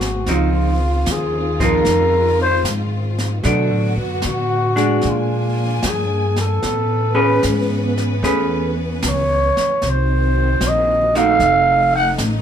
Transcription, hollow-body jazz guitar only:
0, 0, Header, 1, 2, 480
1, 0, Start_track
1, 0, Tempo, 793651
1, 167, Time_signature, 4, 2, 24, 8
1, 7510, End_track
2, 0, Start_track
2, 0, Title_t, "Hollow-body jazz guitar"
2, 0, Program_c, 0, 26
2, 170, Note_on_c, 0, 53, 44
2, 172, Note_on_c, 0, 60, 48
2, 176, Note_on_c, 0, 63, 55
2, 461, Note_off_c, 0, 53, 0
2, 462, Note_off_c, 0, 60, 0
2, 464, Note_off_c, 0, 63, 0
2, 968, Note_on_c, 0, 53, 56
2, 970, Note_on_c, 0, 60, 62
2, 980, Note_on_c, 0, 63, 63
2, 1573, Note_off_c, 0, 53, 0
2, 1574, Note_off_c, 0, 60, 0
2, 1579, Note_off_c, 0, 63, 0
2, 2078, Note_on_c, 0, 54, 57
2, 2078, Note_on_c, 0, 57, 55
2, 2088, Note_on_c, 0, 62, 62
2, 2373, Note_off_c, 0, 57, 0
2, 2374, Note_off_c, 0, 54, 0
2, 2379, Note_off_c, 0, 62, 0
2, 2879, Note_on_c, 0, 62, 63
2, 2880, Note_on_c, 0, 56, 61
2, 3491, Note_off_c, 0, 62, 0
2, 3492, Note_off_c, 0, 56, 0
2, 4323, Note_on_c, 0, 61, 71
2, 4323, Note_on_c, 0, 68, 65
2, 4323, Note_on_c, 0, 71, 68
2, 4938, Note_off_c, 0, 61, 0
2, 4938, Note_off_c, 0, 68, 0
2, 4938, Note_off_c, 0, 71, 0
2, 4977, Note_on_c, 0, 57, 48
2, 4981, Note_on_c, 0, 61, 47
2, 4983, Note_on_c, 0, 68, 48
2, 4985, Note_on_c, 0, 71, 52
2, 5271, Note_off_c, 0, 57, 0
2, 5272, Note_off_c, 0, 61, 0
2, 5273, Note_off_c, 0, 68, 0
2, 5275, Note_off_c, 0, 71, 0
2, 6746, Note_on_c, 0, 63, 62
2, 6747, Note_on_c, 0, 57, 58
2, 6749, Note_on_c, 0, 66, 60
2, 7344, Note_off_c, 0, 57, 0
2, 7344, Note_off_c, 0, 63, 0
2, 7345, Note_off_c, 0, 66, 0
2, 7510, End_track
0, 0, End_of_file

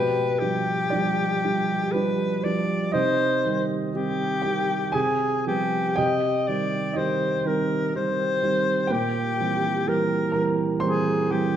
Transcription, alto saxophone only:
0, 0, Header, 1, 2, 480
1, 0, Start_track
1, 0, Key_signature, -3, "minor"
1, 0, Tempo, 1013514
1, 1391, Time_signature, 3, 2, 24, 8
1, 2823, Tempo, 985222
1, 3783, Tempo, 963082
1, 5594, End_track
2, 0, Start_track
2, 0, Title_t, "Alto saxophone"
2, 0, Program_c, 0, 65
2, 0, Note_on_c, 0, 71, 77
2, 183, Note_on_c, 0, 67, 74
2, 190, Note_off_c, 0, 71, 0
2, 907, Note_on_c, 0, 71, 68
2, 914, Note_off_c, 0, 67, 0
2, 1153, Note_on_c, 0, 74, 71
2, 1160, Note_off_c, 0, 71, 0
2, 1384, Note_off_c, 0, 74, 0
2, 1387, Note_on_c, 0, 72, 76
2, 1727, Note_off_c, 0, 72, 0
2, 1863, Note_on_c, 0, 67, 67
2, 2339, Note_on_c, 0, 68, 63
2, 2346, Note_off_c, 0, 67, 0
2, 2583, Note_off_c, 0, 68, 0
2, 2589, Note_on_c, 0, 67, 67
2, 2828, Note_on_c, 0, 75, 74
2, 2835, Note_off_c, 0, 67, 0
2, 3074, Note_on_c, 0, 74, 68
2, 3081, Note_off_c, 0, 75, 0
2, 3311, Note_on_c, 0, 72, 68
2, 3318, Note_off_c, 0, 74, 0
2, 3555, Note_on_c, 0, 70, 58
2, 3563, Note_off_c, 0, 72, 0
2, 3789, Note_off_c, 0, 70, 0
2, 3796, Note_on_c, 0, 72, 74
2, 4273, Note_on_c, 0, 67, 72
2, 4281, Note_off_c, 0, 72, 0
2, 4755, Note_on_c, 0, 70, 73
2, 4762, Note_off_c, 0, 67, 0
2, 5100, Note_off_c, 0, 70, 0
2, 5230, Note_on_c, 0, 68, 64
2, 5469, Note_on_c, 0, 67, 69
2, 5476, Note_off_c, 0, 68, 0
2, 5594, Note_off_c, 0, 67, 0
2, 5594, End_track
0, 0, End_of_file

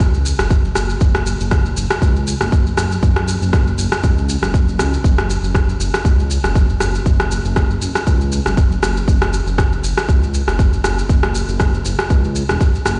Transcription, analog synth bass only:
0, 0, Header, 1, 2, 480
1, 0, Start_track
1, 0, Tempo, 504202
1, 962, Time_signature, 4, 2, 24, 8
1, 12372, End_track
2, 0, Start_track
2, 0, Title_t, "Analog synth bass"
2, 0, Program_c, 0, 38
2, 2, Note_on_c, 0, 37, 94
2, 316, Note_off_c, 0, 37, 0
2, 374, Note_on_c, 0, 30, 80
2, 674, Note_off_c, 0, 30, 0
2, 722, Note_on_c, 0, 30, 86
2, 903, Note_off_c, 0, 30, 0
2, 962, Note_on_c, 0, 30, 103
2, 1276, Note_off_c, 0, 30, 0
2, 1335, Note_on_c, 0, 30, 96
2, 1635, Note_off_c, 0, 30, 0
2, 1684, Note_on_c, 0, 30, 88
2, 1779, Note_off_c, 0, 30, 0
2, 1921, Note_on_c, 0, 37, 98
2, 2236, Note_off_c, 0, 37, 0
2, 2293, Note_on_c, 0, 30, 81
2, 2594, Note_off_c, 0, 30, 0
2, 2645, Note_on_c, 0, 30, 89
2, 2824, Note_off_c, 0, 30, 0
2, 2882, Note_on_c, 0, 30, 98
2, 3196, Note_off_c, 0, 30, 0
2, 3252, Note_on_c, 0, 30, 97
2, 3554, Note_off_c, 0, 30, 0
2, 3599, Note_on_c, 0, 30, 91
2, 3696, Note_off_c, 0, 30, 0
2, 3841, Note_on_c, 0, 37, 100
2, 4156, Note_off_c, 0, 37, 0
2, 4207, Note_on_c, 0, 30, 79
2, 4558, Note_on_c, 0, 37, 98
2, 4572, Note_off_c, 0, 30, 0
2, 4741, Note_off_c, 0, 37, 0
2, 4801, Note_on_c, 0, 30, 98
2, 5115, Note_off_c, 0, 30, 0
2, 5168, Note_on_c, 0, 30, 101
2, 5471, Note_off_c, 0, 30, 0
2, 5519, Note_on_c, 0, 30, 93
2, 5616, Note_off_c, 0, 30, 0
2, 5757, Note_on_c, 0, 37, 101
2, 6074, Note_off_c, 0, 37, 0
2, 6129, Note_on_c, 0, 30, 85
2, 6432, Note_off_c, 0, 30, 0
2, 6479, Note_on_c, 0, 30, 85
2, 6661, Note_off_c, 0, 30, 0
2, 6719, Note_on_c, 0, 30, 100
2, 7035, Note_off_c, 0, 30, 0
2, 7093, Note_on_c, 0, 30, 102
2, 7394, Note_off_c, 0, 30, 0
2, 7443, Note_on_c, 0, 30, 94
2, 7538, Note_off_c, 0, 30, 0
2, 7682, Note_on_c, 0, 37, 105
2, 7996, Note_off_c, 0, 37, 0
2, 8055, Note_on_c, 0, 30, 79
2, 8355, Note_off_c, 0, 30, 0
2, 8403, Note_on_c, 0, 30, 83
2, 8583, Note_off_c, 0, 30, 0
2, 8640, Note_on_c, 0, 30, 97
2, 8955, Note_off_c, 0, 30, 0
2, 9011, Note_on_c, 0, 30, 103
2, 9313, Note_off_c, 0, 30, 0
2, 9359, Note_on_c, 0, 30, 93
2, 9456, Note_off_c, 0, 30, 0
2, 9601, Note_on_c, 0, 37, 105
2, 9916, Note_off_c, 0, 37, 0
2, 9971, Note_on_c, 0, 30, 83
2, 10273, Note_off_c, 0, 30, 0
2, 10320, Note_on_c, 0, 30, 87
2, 10502, Note_off_c, 0, 30, 0
2, 10561, Note_on_c, 0, 30, 94
2, 10875, Note_off_c, 0, 30, 0
2, 10932, Note_on_c, 0, 30, 103
2, 11233, Note_off_c, 0, 30, 0
2, 11280, Note_on_c, 0, 30, 94
2, 11377, Note_off_c, 0, 30, 0
2, 11521, Note_on_c, 0, 37, 105
2, 11836, Note_off_c, 0, 37, 0
2, 11892, Note_on_c, 0, 28, 88
2, 11971, Note_off_c, 0, 28, 0
2, 12238, Note_on_c, 0, 30, 86
2, 12372, Note_off_c, 0, 30, 0
2, 12372, End_track
0, 0, End_of_file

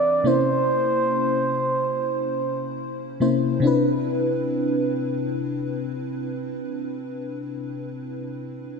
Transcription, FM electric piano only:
0, 0, Header, 1, 2, 480
1, 0, Start_track
1, 0, Key_signature, 0, "major"
1, 0, Tempo, 845070
1, 144, Time_signature, 4, 2, 24, 8
1, 4998, End_track
2, 0, Start_track
2, 0, Title_t, "FM electric piano"
2, 0, Program_c, 0, 5
2, 0, Control_c, 0, 64, 127
2, 0, Note_on_c, 0, 48, 78
2, 0, Note_on_c, 0, 52, 75
2, 0, Note_on_c, 0, 60, 75
2, 0, Note_on_c, 0, 62, 73
2, 0, Note_on_c, 0, 71, 89
2, 117, Note_off_c, 0, 48, 0
2, 118, Note_off_c, 0, 60, 0
2, 121, Note_off_c, 0, 62, 0
2, 123, Note_off_c, 0, 52, 0
2, 126, Note_off_c, 0, 71, 0
2, 136, Note_on_c, 0, 48, 64
2, 140, Note_on_c, 0, 58, 62
2, 144, Note_on_c, 0, 61, 60
2, 150, Note_on_c, 0, 64, 64
2, 152, Control_c, 0, 64, 0
2, 155, Note_on_c, 0, 72, 69
2, 243, Control_c, 0, 64, 127
2, 1797, Note_off_c, 0, 48, 0
2, 1799, Note_off_c, 0, 58, 0
2, 1802, Note_off_c, 0, 61, 0
2, 1805, Note_off_c, 0, 64, 0
2, 1807, Note_off_c, 0, 72, 0
2, 1819, Note_on_c, 0, 48, 64
2, 1822, Note_on_c, 0, 58, 60
2, 1825, Note_on_c, 0, 61, 59
2, 1826, Note_on_c, 0, 64, 60
2, 1829, Note_on_c, 0, 72, 71
2, 2038, Note_off_c, 0, 48, 0
2, 2045, Note_on_c, 0, 48, 79
2, 2055, Note_on_c, 0, 60, 71
2, 2063, Note_off_c, 0, 58, 0
2, 2065, Note_off_c, 0, 61, 0
2, 2065, Note_off_c, 0, 64, 0
2, 2066, Note_on_c, 0, 62, 77
2, 2067, Note_off_c, 0, 72, 0
2, 2071, Control_c, 0, 64, 0
2, 2075, Note_on_c, 0, 64, 74
2, 2084, Note_on_c, 0, 71, 88
2, 2162, Control_c, 0, 64, 127
2, 4146, Note_off_c, 0, 48, 0
2, 4156, Note_off_c, 0, 60, 0
2, 4167, Note_off_c, 0, 62, 0
2, 4176, Note_off_c, 0, 64, 0
2, 4185, Note_off_c, 0, 71, 0
2, 4998, End_track
0, 0, End_of_file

